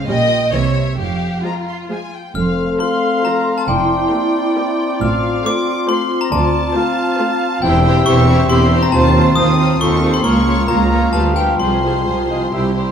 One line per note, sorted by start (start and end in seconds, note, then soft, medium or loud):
0.08 0.44 A#1 medium
0.08 0.46 A#2 medium
0.08 0.16 G3 soft
0.08 0.16 C#4 soft
0.08 0.52 D#5 medium
0.08 0.53 G5 medium
0.53 0.89 C2 medium
0.53 0.91 C3 soft
0.53 0.61 E3 soft
0.53 0.61 A#3 soft
0.53 0.99 C#5 medium
0.53 0.98 E5 soft
0.98 1.35 F1 soft
0.98 1.37 F2 soft
0.98 1.44 G4 medium
0.98 1.39 F5 soft
1.44 1.52 F3 soft
1.44 1.52 G#3 soft
1.44 2.13 F4 soft
1.44 1.53 A#5 soft
1.68 1.76 C6 soft
1.89 1.98 F3 soft
1.89 1.97 G#3 soft
1.89 2.13 G#5 soft
2.14 2.36 G5 soft
2.35 2.71 F1 medium
2.35 2.71 F2 medium
2.35 3.65 A3 soft
2.35 3.65 C4 soft
2.35 3.64 A4 soft
2.35 2.77 F5 medium
2.35 4.97 C6 soft
2.35 2.77 F6 medium
2.80 3.13 F3 soft
2.80 3.13 F4 soft
2.80 3.13 A4 soft
2.80 3.13 C5 soft
2.80 3.64 F5 medium
2.80 3.21 C6 medium
2.80 3.24 C6 medium
3.23 3.57 F3 soft
3.23 3.57 F4 soft
3.23 3.57 A4 soft
3.23 3.57 C5 soft
3.23 3.55 A#5 medium
3.23 3.58 A#5 soft
3.57 3.61 A5 medium
3.57 3.68 A5 medium
3.68 4.03 F1 medium
3.68 4.04 F2 medium
3.68 6.29 C4 soft
3.68 4.99 E4 soft
3.68 5.90 D5 medium
3.68 4.98 G5 medium
3.68 4.97 G5 medium
4.12 4.46 A#3 soft
4.12 4.46 E4 soft
4.12 4.45 G4 soft
4.12 4.45 C5 soft
4.57 4.90 A#3 soft
4.57 4.90 E4 medium
4.57 4.90 G4 soft
4.57 4.90 C5 medium
5.01 5.36 A1 medium
5.01 5.36 A2 medium
5.01 7.59 F4 medium
5.01 7.60 F4 soft
5.01 5.44 F5 medium
5.01 7.60 C6 medium
5.01 5.42 F6 medium
5.46 5.78 A3 medium
5.46 5.78 F4 medium
5.46 5.78 A4 soft
5.46 5.78 C5 medium
5.46 5.86 D6 medium
5.46 5.90 D6 medium
5.89 6.22 A3 medium
5.89 6.22 F4 medium
5.89 6.21 A4 medium
5.89 6.31 C5 soft
5.89 6.21 C5 medium
5.89 6.19 C6 medium
5.89 6.22 C6 medium
6.21 6.31 A#5 medium
6.21 6.26 A#5 medium
6.31 6.67 D2 medium
6.31 7.61 C4 medium
6.31 6.74 D5 medium
6.31 7.59 A5 medium
6.31 7.62 A5 medium
6.76 7.09 A3 medium
6.76 7.09 F4 medium
6.76 7.09 C5 medium
6.76 7.62 F5 medium
7.20 7.52 A3 medium
7.20 7.52 F4 medium
7.20 7.52 C5 medium
7.62 8.02 E1 medium
7.62 8.01 E2 medium
7.62 7.84 C4 medium
7.62 10.22 C4 medium
7.62 7.83 E4 medium
7.62 8.91 G4 medium
7.62 7.85 G4 medium
7.62 7.84 C5 medium
7.62 8.75 E5 medium
7.62 8.03 G5 medium
7.62 8.06 G5 medium
7.84 8.05 C4 medium
7.84 8.05 E4 medium
7.84 8.06 G4 medium
7.84 8.05 C5 medium
8.06 8.45 E1 medium
8.06 8.45 E2 medium
8.06 8.26 C4 medium
8.06 8.26 E4 medium
8.06 8.28 G4 medium
8.06 8.23 G4 soft
8.06 8.28 C5 medium
8.06 8.15 C6 soft
8.06 8.47 C#6 medium
8.06 8.51 C#6 medium
8.28 8.49 C4 medium
8.28 8.49 E4 medium
8.28 8.50 G4 medium
8.28 8.50 C5 soft
8.49 8.89 E1 medium
8.49 8.89 E2 medium
8.49 8.70 C4 medium
8.49 8.70 E4 medium
8.49 8.66 G4 medium
8.49 8.72 G4 medium
8.49 8.72 C5 medium
8.49 8.81 C6 medium
8.49 8.59 C6 medium
8.49 8.83 C6 medium
8.71 8.93 C4 medium
8.71 8.93 E4 soft
8.71 8.94 G4 soft
8.71 8.94 C5 medium
8.83 8.93 A#5 medium
8.83 8.94 A#5 medium
8.92 9.32 D#2 medium
8.92 9.15 C4 medium
8.92 11.62 F4 medium
8.92 9.15 F4 medium
8.92 9.14 F4 medium
8.92 9.52 C5 medium
8.92 9.16 C5 medium
8.92 9.34 A5 medium
8.92 9.37 A5 medium
9.16 9.36 C4 medium
9.16 9.36 F4 medium
9.16 9.37 F4 medium
9.16 9.37 C5 medium
9.36 9.76 D#2 medium
9.36 9.58 C4 medium
9.36 9.58 F4 medium
9.36 9.53 F4 soft
9.36 9.58 F4 medium
9.36 9.59 C5 soft
9.36 9.46 C6 soft
9.36 9.77 D#6 medium
9.36 9.81 D#6 medium
9.59 9.80 C4 medium
9.59 9.80 F4 medium
9.59 9.81 F4 medium
9.59 9.81 C5 soft
9.81 10.20 D#2 medium
9.81 10.01 C4 soft
9.81 10.02 F4 medium
9.81 10.03 F4 medium
9.81 9.98 F4 soft
9.81 10.22 A4 medium
9.81 10.03 C5 medium
9.81 9.90 C6 soft
9.81 10.12 C#6 medium
9.81 10.14 C#6 medium
10.02 10.25 C4 soft
10.02 10.23 F4 soft
10.02 10.24 F4 soft
10.02 10.26 C5 soft
10.14 10.24 C6 medium
10.14 10.26 C6 medium
10.23 10.64 C#2 medium
10.23 10.46 A#3 medium
10.23 10.99 A#3 medium
10.23 10.46 F4 medium
10.23 10.70 A#4 medium
10.23 10.45 C#5 medium
10.23 10.66 C#6 medium
10.23 10.69 C#6 medium
10.47 10.68 A#3 soft
10.47 10.67 F4 soft
10.47 10.68 F4 soft
10.47 10.68 C#5 soft
10.68 11.09 C#2 medium
10.68 10.91 A#3 soft
10.68 10.91 F4 soft
10.68 10.86 F4 soft
10.68 10.90 C#5 soft
10.68 11.59 F5 medium
10.68 11.11 A#5 medium
10.68 11.13 A#5 medium
10.68 10.78 A#5 soft
10.92 11.14 A#3 soft
10.92 11.14 F4 soft
10.92 11.13 F4 soft
10.92 11.14 C#5 soft
11.13 11.56 D2 medium
11.13 11.56 D2 soft
11.13 11.37 G3 soft
11.13 11.61 B3 soft
11.13 11.36 F4 soft
11.13 11.32 F4 soft
11.13 11.37 G4 soft
11.13 11.36 B4 soft
11.13 11.35 A5 medium
11.13 11.22 A5 medium
11.13 11.23 B5 soft
11.36 11.61 G3 soft
11.36 11.60 F4 soft
11.36 11.61 G4 soft
11.36 11.61 B4 soft
11.36 11.59 G5 medium
11.36 11.45 G5 soft
11.60 12.02 C2 soft
11.60 12.03 C2 medium
11.60 11.84 F3 soft
11.60 12.55 G#3 soft
11.60 11.84 F4 soft
11.60 12.53 F4 soft
11.60 11.83 G#4 soft
11.60 12.02 C5 soft
11.60 11.83 C5 soft
11.60 12.72 C6 medium
11.60 12.74 C6 medium
11.85 12.07 F3 soft
11.85 12.07 F4 soft
11.85 12.05 G#4 soft
11.85 12.05 C5 soft
12.06 12.48 C2 soft
12.06 12.49 C2 soft
12.06 12.31 F3 soft
12.06 12.31 F4 soft
12.06 12.25 F4 soft
12.06 12.28 G#4 soft
12.06 12.28 C5 soft
12.06 12.18 C5 soft
12.06 12.16 G#5 soft
12.29 12.54 F3 soft
12.29 12.54 F4 soft
12.29 12.53 G#4 soft
12.29 12.52 C5 soft
12.29 12.41 D#5 soft
12.54 12.91 C2 soft
12.54 12.76 G3 soft
12.54 12.65 G3 soft
12.54 12.76 E4 soft
12.54 12.71 E4 soft
12.54 12.65 E4 soft
12.54 12.76 G4 soft
12.54 12.75 C5 soft
12.54 12.64 E5 soft
12.54 12.62 G5 soft
12.77 12.91 G3 soft
12.77 12.91 E4 soft
12.77 12.91 G4 soft
12.77 12.91 C5 soft